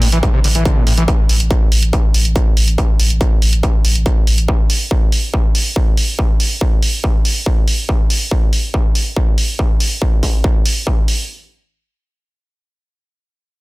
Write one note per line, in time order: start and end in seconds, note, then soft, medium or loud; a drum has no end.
0.02 0.12 A1 loud
0.02 0.08 A2 medium
0.02 open hi-hat loud
0.12 0.23 A1 medium
0.12 0.18 E3 loud
0.12 closed hi-hat medium
0.23 0.29 G2 medium
0.23 kick loud
0.23 closed hi-hat medium
0.34 0.40 C3 loud
0.44 0.54 A1 medium
0.44 0.48 D3 medium
0.44 open hi-hat loud
0.55 0.65 A1 medium
0.55 0.64 E3 medium
0.55 closed hi-hat medium
0.65 0.78 D3 medium
0.65 kick loud
0.65 closed hi-hat medium
0.76 0.85 A2 loud
0.87 0.97 A1 loud
0.87 0.93 A2 medium
0.87 open hi-hat loud
0.98 1.08 A1 medium
0.98 1.03 E3 loud
0.98 closed hi-hat medium
1.08 kick loud
1.08 closed hi-hat medium
1.29 1.40 A1 loud
1.29 open hi-hat loud
1.40 1.50 A1 medium
1.40 closed hi-hat medium
1.51 kick loud
1.51 closed hi-hat medium
1.72 1.82 A1 loud
1.72 open hi-hat loud
1.83 1.93 A1 medium
1.83 closed hi-hat medium
1.93 kick loud
1.93 closed hi-hat medium
2.14 2.25 A1 medium
2.14 open hi-hat loud
2.25 2.36 A1 medium
2.25 closed hi-hat medium
2.36 kick loud
2.36 closed hi-hat medium
2.57 2.67 A1 loud
2.57 open hi-hat loud
2.68 2.78 A1 medium
2.68 closed hi-hat medium
2.78 kick loud
2.78 closed hi-hat medium
3.00 3.10 A1 loud
3.00 open hi-hat loud
3.10 3.21 A1 medium
3.10 closed hi-hat medium
3.21 kick loud
3.21 closed hi-hat medium
3.42 3.52 A1 loud
3.42 open hi-hat loud
3.53 3.63 A1 medium
3.53 closed hi-hat medium
3.63 kick loud
3.63 closed hi-hat medium
3.85 3.95 A1 loud
3.85 open hi-hat loud
3.95 4.06 A1 medium
3.95 closed hi-hat medium
4.06 kick loud
4.06 closed hi-hat medium
4.27 4.37 A1 loud
4.27 open hi-hat loud
4.38 4.48 A1 medium
4.38 closed hi-hat medium
4.48 kick loud
4.70 open hi-hat loud
4.91 kick loud
5.12 open hi-hat loud
5.34 kick loud
5.55 open hi-hat loud
5.76 kick loud
5.97 open hi-hat loud
6.19 kick loud
6.40 open hi-hat loud
6.61 kick loud
6.83 open hi-hat loud
7.04 kick loud
7.25 open hi-hat medium
7.46 kick loud
7.68 open hi-hat loud
7.89 kick loud
8.10 open hi-hat loud
8.31 kick loud
8.53 open hi-hat medium
8.74 kick loud
8.95 open hi-hat medium
9.16 kick loud
9.38 open hi-hat loud
9.59 kick loud
9.80 open hi-hat loud
10.02 kick loud
10.23 kick medium
10.23 open hi-hat loud
10.44 kick loud
10.66 open hi-hat loud
10.87 kick loud
11.08 open hi-hat loud